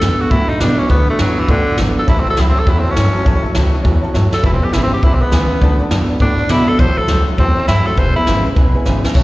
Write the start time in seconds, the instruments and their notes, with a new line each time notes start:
Already playing: tenor saxophone A4
0.01 upright bass F#2, steel-string acoustic guitar D3 F#3 B3 F#4 A4, snare, open hi-hat
0.20 steel-string acoustic guitar B3 F#4 A4, tenor saxophone F#4, muted upright bass stroke
0.30 upright bass A2, clean electric guitar D3 A3, steel-string acoustic guitar F#3 B3 F#4 A4, tenor saxophone E4, kick, open hi-hat
0.49 steel-string acoustic guitar B3 F#4 A4, tenor saxophone D#4, muted upright bass stroke
0.60 upright bass B2, steel-string acoustic guitar D3 F#3 B3 F#4 A4, tenor saxophone D4, snare, open hi-hat
0.79 steel-string acoustic guitar B3 F#4 A4, tenor saxophone C#4, muted upright bass stroke
0.89 upright bass D2, steel-string acoustic guitar D3 F#3 B3 F#4 A4, clean electric guitar A3, tenor saxophone B3, kick, open hi-hat
1.08 tenor saxophone A3, steel-string acoustic guitar B3 F#4 A4, muted upright bass stroke
1.19 upright bass F#2, steel-string acoustic guitar D3 F#3 B3 F#4 A4, tenor saxophone F#3, snare, open hi-hat
1.37 tenor saxophone E3, steel-string acoustic guitar B3 F#4 A4, muted upright bass stroke
1.48 upright bass A2, clean electric guitar D3 A3, tenor saxophone D3, steel-string acoustic guitar F#3 B3 F#4 A4, kick, open hi-hat
1.67 steel-string acoustic guitar B3 F#4 A4, muted upright bass stroke
1.78 upright bass G#1, steel-string acoustic guitar D3 F#3 B3 F#4 A4, snare, open hi-hat
1.96 steel-string acoustic guitar B3 F#4 A4, tenor saxophone A4, muted upright bass stroke
2.06 upright bass A1, steel-string acoustic guitar A2 E3 F#3 A3 C#4 F#4, tenor saxophone E4, upright piano C#5 E5 A5, kick, open hi-hat
2.20 tenor saxophone C4
2.24 steel-string acoustic guitar A3 C#4 F#4, upright piano C#5 E5 F#5, muted upright bass stroke
2.29 steel-string acoustic guitar F#3, tenor saxophone A4
2.36 upright bass C#2, steel-string acoustic guitar A2 E3 F#3 A3 C#4 F#4, upright piano C#5 B5, snare
2.40 tenor saxophone E4
2.49 tenor saxophone C4
2.54 steel-string acoustic guitar A3 C#4 F#4, upright piano C#5 E5 A5, muted upright bass stroke
2.58 steel-string acoustic guitar F#3, tenor saxophone A4
2.66 upright bass E2, clean electric guitar A2 E3, steel-string acoustic guitar F#3 A3 C#4 F#4, tenor saxophone E4, upright piano C#5 E5 F#5, kick, open hi-hat
2.79 tenor saxophone C4
2.83 steel-string acoustic guitar A3 C#4 F#4, upright piano C#5 E5 A5, muted upright bass stroke
2.88 steel-string acoustic guitar F#3, tenor saxophone C#4
2.94 upright bass G2, steel-string acoustic guitar A2 E3 F#3, upright piano C#5 E5 A5, snare
2.98 steel-string acoustic guitar A3 C#4 F#4
3.13 steel-string acoustic guitar A3 C#4 F#4, upright piano C#5 E5 A5, muted upright bass stroke
3.17 steel-string acoustic guitar F#3
3.24 upright bass A1, steel-string acoustic guitar A2 E3 F#3 A3 C#4 F#4, upright piano C#5 E5 A5, kick, open hi-hat
3.41 steel-string acoustic guitar F#4, upright piano C#5 E5 A5, muted upright bass stroke
3.46 steel-string acoustic guitar F#3 A3 C#4
3.53 upright bass C#2, steel-string acoustic guitar A2 E3 F#3 A3 C#4, upright piano C#5 E5 A5, snare
3.58 steel-string acoustic guitar F#4
3.72 steel-string acoustic guitar A3 C#4 F#4, upright piano C#5 E5 A5, muted upright bass stroke
3.77 steel-string acoustic guitar F#3
3.83 upright bass E2, clean electric guitar A2 E3, steel-string acoustic guitar F#3, upright piano C#5 E5 A5, kick, open hi-hat
3.87 steel-string acoustic guitar A3 C#4 F#4
4.01 steel-string acoustic guitar F#3 A3 C#4 F#4, upright piano C#5 E5 A5, muted upright bass stroke
4.13 upright bass G2, steel-string acoustic guitar A2 E3 F#3 A3 C#4 F#4, upright piano C#5 E5 A5, snare
4.32 steel-string acoustic guitar F#3 A3 C#4 F#4, tenor saxophone A4, upright piano C#5 E5 A5, muted upright bass stroke, snare
4.42 upright bass E1, clean electric guitar E2 B2, steel-string acoustic guitar E3 G#3 B3 C#4 G#4, tenor saxophone E4, upright piano B4 E5 G#5, kick, open hi-hat
4.53 tenor saxophone C4
4.62 steel-string acoustic guitar B3 C#4 G#4, tenor saxophone G4, upright piano B4 E5 G#5, muted upright bass stroke
4.73 upright bass G#1, clean electric guitar E2 C#3, steel-string acoustic guitar E3 G#3 B3 C#4 G#4, tenor saxophone E4, upright piano B4 E5 G#5, snare, open hi-hat
4.83 tenor saxophone C4
4.91 steel-string acoustic guitar B3 C#4 G#4, tenor saxophone G4, upright piano B4 E5 F#5, muted upright bass stroke
5.02 upright bass B1, clean electric guitar E2 B2, steel-string acoustic guitar G#3 B3 C#4 G#4, tenor saxophone E4, upright piano B4 E5 G#5, kick, open hi-hat
5.14 tenor saxophone C4
5.21 tenor saxophone B3, steel-string acoustic guitar B3 C#4 G#4, upright piano B4 E5 G#5, muted upright bass stroke
5.32 upright bass D2, clean electric guitar E2 C#3, steel-string acoustic guitar E3 G#3 B3 C#4 G#4, upright piano B4 E5 G#5, snare, open hi-hat
5.49 steel-string acoustic guitar B3 C#4 G#4, upright piano B4 E5 G#5
5.61 upright bass D2, steel-string acoustic guitar D3 F#3 B3 F#4 A4, clean electric guitar A3, upright piano D5 F#5 A5, kick, open hi-hat
5.79 steel-string acoustic guitar B3 F#4 A4, upright piano D5 F#5 A5, muted upright bass stroke
5.90 upright bass F#2, steel-string acoustic guitar D3 F#3 B3 F#4 A4, upright piano D5 F#5 A5, snare, open hi-hat
6.09 steel-string acoustic guitar B3 F#4 A4, upright piano D5 F#5 A5, muted upright bass stroke
6.19 upright bass A2, clean electric guitar D3 A3, steel-string acoustic guitar F#3 B3 F#4 A4, tenor saxophone D4, upright piano D5 F#5 B5, kick, open hi-hat
6.38 steel-string acoustic guitar B3 F#4 A4, upright piano D5 F#5 A5, muted upright bass stroke
6.49 upright bass B2, steel-string acoustic guitar D3 F#3 B3 F#4 A4, tenor saxophone E4, upright piano D5 F#5 B5, snare, open hi-hat
6.67 steel-string acoustic guitar B3 F#4 A4, tenor saxophone A4, upright piano D5 F#5 A5, muted upright bass stroke
6.79 upright bass A1, steel-string acoustic guitar A2 E3 F#3 A3 C#4 F#4, tenor saxophone C5, upright piano C#5 E5 A5, kick, open hi-hat
6.97 steel-string acoustic guitar F#3 A3 C#4 F#4, tenor saxophone A4, upright piano C#5 E5 A5, muted upright bass stroke
7.08 upright bass C#2, steel-string acoustic guitar A2 E3 F#3 A3 C#4 F#4, upright piano C#5 E5, snare, open hi-hat
7.27 steel-string acoustic guitar F#3 A3 C#4 F#4, upright piano C#5 E5 A5, muted upright bass stroke
7.37 upright bass E2, clean electric guitar A2 E3, steel-string acoustic guitar F#3 A3 C#4 F#4, tenor saxophone C4, upright piano C#5 E5 A5, kick, open hi-hat
7.56 steel-string acoustic guitar F#3 A3 C#4 F#4, upright piano C#5 E5 A5
7.66 upright bass G2, steel-string acoustic guitar A2 E3 F#3 A3 C#4 F#4, tenor saxophone E4, upright piano C#5 E5 A5, snare, open hi-hat
7.85 steel-string acoustic guitar F#3 A3 C#4 F#4, tenor saxophone A4, upright piano C#5 E5, muted upright bass stroke
7.97 upright bass E1, clean electric guitar E2 B2, steel-string acoustic guitar E3 G#3 B3 C#4 G#4, upright piano B4 E5 G#5, tenor saxophone C5, kick, open hi-hat
8.14 steel-string acoustic guitar B3 C#4 G#4, tenor saxophone E4, upright piano B4 E5 G#5, muted upright bass stroke
8.27 upright bass G#1, clean electric guitar E2 C#3, steel-string acoustic guitar E3 G#3 B3 C#4 G#4, upright piano B4 E5 G#5, snare, open hi-hat
8.44 steel-string acoustic guitar B3 C#4 G#4, upright piano B4 E5 G#5, muted upright bass stroke
8.55 upright bass B1, clean electric guitar E2 B2, steel-string acoustic guitar G#3 B3 C#4 G#4, upright piano B4 E5 G#5, kick, open hi-hat
8.74 steel-string acoustic guitar B3 C#4 G#4, upright piano B4 E5 G#5, muted upright bass stroke
8.85 upright bass G#1, clean electric guitar E2 C#3, steel-string acoustic guitar E3 G#3 B3 C#4 G#4, upright piano B4 E5 G#5, snare
9.03 steel-string acoustic guitar B3 C#4 G#4, upright piano B4 E5 G#5, muted upright bass stroke, snare
9.14 upright bass A1, steel-string acoustic guitar A2 E3 F#3 A3 C#4 F#4, upright piano C#5 E5 A5, kick, crash